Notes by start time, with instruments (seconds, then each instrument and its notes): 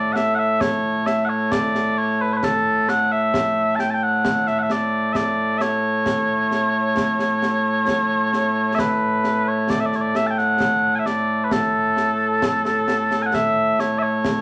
Already playing: bagpipes A2 A3 D5
0.13 bagpipes E5 F#5, snare
0.35 bagpipes F#5
0.39 bagpipes E5
0.61 bagpipes C#5, concert bass drum, snare
1.06 bagpipes E5, snare
1.25 bagpipes F#5
1.29 bagpipes C#5
1.52 bagpipes D5, concert bass drum, snare
1.75 snare
1.98 bagpipes C#5
2.21 bagpipes B4
2.33 bagpipes B4 C#5
2.43 bagpipes A4, concert bass drum, snare
2.88 bagpipes F#5, snare
3.12 bagpipes E5
3.34 concert bass drum, snare
3.76 bagpipes A5, snare
3.80 bagpipes G5
3.91 bagpipes G5 A5
4.03 bagpipes F#5
4.25 concert bass drum, snare
4.47 bagpipes E5, snare
4.59 bagpipes F#5
4.63 bagpipes E5
4.70 bagpipes D5, snare
5.13 bagpipes D5 E5, concert bass drum, snare
5.58 bagpipes C#5 E5, snare
6.06 concert bass drum, snare
6.52 snare
6.97 concert bass drum, snare
7.19 snare
7.42 snare
7.88 concert bass drum, snare
8.33 snare
8.75 bagpipes E5, concert bass drum, snare
8.79 bagpipes B4
9.24 snare
9.48 bagpipes C#5
9.70 bagpipes D5, concert bass drum, snare
9.80 bagpipes E5
9.86 bagpipes D5
9.92 bagpipes C#5, snare
10.01 bagpipes D5
10.15 bagpipes E5, snare
10.27 bagpipes G5 A5
10.38 bagpipes F#5, snare
10.60 concert bass drum, snare
10.95 bagpipes E5 G#5
11.06 bagpipes D5, snare
11.44 bagpipes B4
11.51 bagpipes A4, concert bass drum, snare
11.97 snare
12.42 concert bass drum, snare
12.65 snare
12.88 snare
13.11 snare
13.22 bagpipes F#5 G#5
13.34 bagpipes E5, concert bass drum, snare
13.79 bagpipes C#5, snare
13.99 bagpipes C#5 E5
14.25 concert bass drum, snare